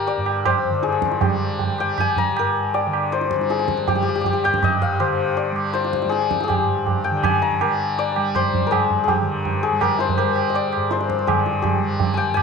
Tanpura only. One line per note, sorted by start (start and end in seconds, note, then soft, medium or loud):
0.00 0.17 G2 medium
0.00 0.69 D3 medium
0.00 1.24 G3 medium
0.17 2.32 G2 medium
0.70 2.86 D3 medium
1.24 1.80 G3 medium
1.80 3.38 G3 medium
2.33 4.45 G2 medium
2.86 4.99 D3 medium
3.38 3.92 G3 medium
3.92 5.52 G3 medium
4.45 6.58 G2 medium
4.99 7.10 D3 medium
5.52 6.05 G3 medium
6.05 7.64 G3 medium
6.58 8.68 G2 medium
7.10 9.21 D3 medium
7.64 8.17 G3 medium
8.17 9.72 G3 medium
8.68 10.76 G2 medium
9.21 11.26 D3 medium
9.72 10.24 G3 medium
10.24 11.79 G3 medium
10.76 12.43 G2 medium
11.26 12.43 D3 medium
11.79 12.31 G3 medium
12.31 12.43 G3 medium